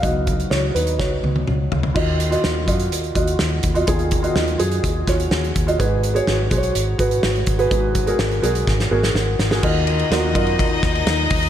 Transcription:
Already playing: felt piano F#3 B3 D#4 F#4 B4 D#5 F5 F#5
0.02 fingered electric bass C#2, felt piano F#3 B3 D#4 F#4 D#5, kick, closed hi-hat
0.27 kick, closed hi-hat
0.40 closed hi-hat
0.50 fingered electric bass C#2, felt piano F#4 C#5, snare
0.75 fingered electric bass D#2, felt piano D#4 B4, closed hi-hat
0.87 closed hi-hat
0.99 fingered electric bass C#2, felt piano F#4 C#5, kick, snare
1.23 fingered electric bass C#2, high tom
1.36 high tom
1.47 fingered electric bass C#2, mid tom
1.72 fingered electric bass C#2, floor tom
1.83 floor tom
1.94 fingered electric bass D#2, felt piano D#3 F4 F#4 D#5, kick, crash
2.20 closed hi-hat
2.31 felt piano F4 F#4 D#5, closed hi-hat
2.44 fingered electric bass D#2, snare
2.67 fingered electric bass F#2, felt piano F4 F#4 D#5, kick, closed hi-hat
2.80 closed hi-hat
2.92 fingered electric bass D#2, closed hi-hat
3.04 closed hi-hat
3.15 fingered electric bass D#2, felt piano F4 F#4 D#5, kick, closed hi-hat
3.27 closed hi-hat
3.39 fingered electric bass D#2, snare
3.63 fingered electric bass D#2, kick, closed hi-hat
3.74 felt piano F4 F#4 D#5, closed hi-hat
3.87 fingered electric bass D#2, felt piano D#3 F4 F#4 G#4, kick, closed hi-hat
3.99 closed hi-hat
4.11 kick, closed hi-hat
4.22 felt piano F4 F#4 D#5, closed hi-hat
4.36 fingered electric bass D#2, snare
4.48 closed hi-hat
4.58 fingered electric bass F#2, felt piano F4 F#4 G#4, closed hi-hat
4.71 closed hi-hat
4.84 fingered electric bass D#2, kick, closed hi-hat
5.07 fingered electric bass D#2, felt piano F4 F#4 C#5, kick, snare, closed hi-hat
5.20 closed hi-hat
5.31 fingered electric bass D#2, snare
5.44 closed hi-hat
5.56 fingered electric bass D#2, kick, closed hi-hat
5.67 felt piano F4 F#4 D#5, closed hi-hat
5.79 fingered electric bass G#1, felt piano G#2 F#4 G#4 B4, kick, closed hi-hat
6.03 closed hi-hat
6.14 felt piano F#4 G#4 C#5, closed hi-hat
6.27 fingered electric bass G#1, snare
6.50 fingered electric bass B1, felt piano F#4 G#4 C5, kick, closed hi-hat
6.57 felt piano C#5
6.63 closed hi-hat
6.75 fingered electric bass G#1, closed hi-hat
6.98 fingered electric bass G#1, felt piano F#4 G#4 B4, kick, closed hi-hat
7.11 closed hi-hat
7.23 fingered electric bass G#1, snare
7.35 closed hi-hat
7.47 fingered electric bass G#1, kick, closed hi-hat
7.58 felt piano F#4 G#4 B4, closed hi-hat
7.70 fingered electric bass G#1, felt piano G#2 F#4 G#4, kick, closed hi-hat
7.95 kick, closed hi-hat
8.06 felt piano F#4 G#4 A#4, closed hi-hat
8.19 fingered electric bass G#1, snare
8.31 closed hi-hat
8.42 fingered electric bass B1, felt piano F#4 G#4 A#4, closed hi-hat
8.55 closed hi-hat
8.67 fingered electric bass G#1, kick, snare
8.80 snare
8.91 fingered electric bass G#1, felt piano F#4 G#4 A#4
9.03 snare
9.14 fingered electric bass G#1, snare
9.39 fingered electric bass G#1, snare
9.51 felt piano F#4 G#4 A#4, snare
9.62 fingered electric bass D#2, felt piano D#3 F4 F#4 A#4 D#5, violin section D#4 D#5, kick, crash
9.87 ride
9.99 ride
10.11 fingered electric bass D#2, felt piano F4 F#4 A#4 D#5, snare, ride
10.34 fingered electric bass F#2, felt piano F4 F#4 A#4 D#5, kick, ride
10.47 ride
10.59 fingered electric bass D#2, kick, ride
10.83 fingered electric bass D#2, kick, snare, ride
10.95 ride
11.07 fingered electric bass D#2, snare, ride
11.30 fingered electric bass D#2, kick, open hi-hat, ride
11.43 ride

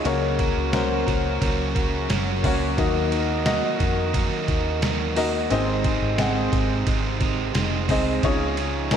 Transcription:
0.04 fingered electric bass C#2, overdriven electric guitar C#3 F#3 C#4 F#4 A#4, string section C#3 A#3 F#4, grand piano C#3 A#3 C#4 F#4 A#4 C#5, ride
0.38 overdriven electric guitar C#4 F#4 A#4, kick, ride
0.57 fingered electric bass C#2
0.73 overdriven electric guitar F#3 C#4 F#4 A#4, grand piano A#3 C#4 F#4 A#4 C5, snare, ride
1.06 fingered electric bass C#2, overdriven electric guitar C#4 F#4 A#4, kick, ride
1.41 fingered electric bass C#2, overdriven electric guitar C#3 F#3 C#4 F#4 A#4, kick, ride
1.75 overdriven electric guitar C#4 F#4 A#4, kick, ride
2.09 fingered electric bass F#1, overdriven electric guitar F#3 C#4 F#4 A#4, snare, ride
2.43 fingered electric bass C#2, grand piano A#3 C#4 F#4 A#4 C#5, overdriven electric guitar C#4 F#4 A#4, kick, snare, open hi-hat, ride
2.77 fingered electric bass D#2, overdriven electric guitar D#3 F#3 D#4 F#4 A#4, string section D#3, grand piano D#3 A#3 D#4 F#4 A#4 D#5, kick, ride
3.11 overdriven electric guitar D#4 F#4 A#4, ride
3.45 overdriven electric guitar F#3 D#4 F#4 A#4, grand piano A#3 D#4 F#4 A#4 D#5, snare, ride
3.79 fingered electric bass F2, overdriven electric guitar D#4 F#4 A#4, kick, ride
4.13 overdriven electric guitar D#3 F#3 D#4 F#4 A#4, kick, ride
4.47 fingered electric bass D#2, overdriven electric guitar D#4 F#4 A#4, kick, ride
4.81 overdriven electric guitar F#3 D#4 F#4 A#4, snare, ride
5.16 grand piano A#3 D#4 F#4 A#4 D#5, overdriven electric guitar D#4 F#4 A#4, snare, open hi-hat, ride
5.50 fingered electric bass G#1, overdriven electric guitar G#2 D#3 G#3 C4 D#4 C5, grand piano G#2 C4 D#4 G#4 C5 D#5, string section C3 D#3 G#3 D#4, ride
5.84 overdriven electric guitar G#3 C4 D#4 C5, kick, ride
6.02 fingered electric bass G#1
6.18 overdriven electric guitar G#3 C4 D#4 C5, grand piano C4 D#4 G#4 C5 F#5, snare, ride
6.52 fingered electric bass G#1, overdriven electric guitar G#3 C4 D#4 C5, kick, ride
6.86 fingered electric bass G#1, overdriven electric guitar G#2 D#3 G#3 C4 D#4 C5, kick, ride
7.20 overdriven electric guitar G#3 C4 D#4 C5, kick, ride
7.54 fingered electric bass F1, overdriven electric guitar G#3 C4 D#4 C5, snare, ride
7.88 fingered electric bass C2, overdriven electric guitar G#3 C4 D#4 C5, grand piano C4 D#4 G#4 C5 D#5, kick, snare, open hi-hat, ride
8.23 fingered electric bass C#2, overdriven electric guitar C#3 G#3 D#4 F4 G#4, grand piano C#3 C#4 D#4 F4 G#4 C#5, string section F3 C#4 D#4, kick, ride
8.57 overdriven electric guitar D#4 F4 G#4, ride
8.91 overdriven electric guitar G#3 D#4 F4 G#4, grand piano C#4 D#4 F4 G#4 A#4, snare, ride

